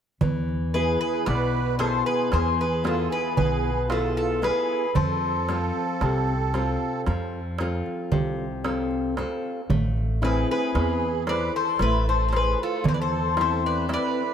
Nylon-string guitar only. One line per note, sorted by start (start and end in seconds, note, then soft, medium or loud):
0.21 1.24 E3 medium
0.74 1.59 B3 soft
0.74 1.59 E4 soft
0.74 1.59 G#4 medium
1.27 2.29 B2 medium
1.79 2.64 B3 soft
1.79 2.64 E4 soft
1.79 2.64 G#4 medium
2.33 3.35 E3 medium
2.84 3.69 B3 soft
2.84 3.69 E4 soft
2.84 3.69 G#4 medium
3.37 4.40 B2 medium
3.89 4.41 B3 soft
3.89 4.41 E4 soft
3.89 4.42 G#4 medium
4.42 4.85 B3 soft
4.42 4.85 E4 soft
4.42 4.85 G#4 medium
4.95 5.98 F3 medium
5.49 6.33 C4 soft
5.49 6.33 F4 soft
5.49 6.33 A4 medium
6.02 7.04 C3 medium
6.54 7.38 C4 soft
6.54 7.39 F4 soft
6.54 7.39 A4 medium
7.07 8.09 F3 medium
7.60 8.44 C4 soft
7.60 8.44 F4 soft
7.60 8.44 A4 medium
8.12 9.14 C3 medium
8.64 9.16 C4 soft
8.64 9.17 F4 soft
8.64 9.17 A4 medium
9.18 9.60 C4 soft
9.18 9.60 F4 soft
9.18 9.60 A4 medium
9.70 10.72 A3 medium
10.22 11.07 C4 medium
10.22 11.06 E4 soft
10.75 11.77 E3 medium
11.27 12.11 E4 medium
11.27 12.11 A4 soft
11.27 12.11 C5 medium
11.81 12.82 A3 medium
12.32 13.16 E4 soft
12.32 13.17 A4 soft
12.32 13.17 C5 medium
12.84 13.86 E3 medium
13.37 14.22 C4 soft
13.37 13.87 E4 soft
13.37 13.88 A4 soft
13.89 14.31 E4 soft
13.89 14.31 A4 soft
13.89 14.32 E5 medium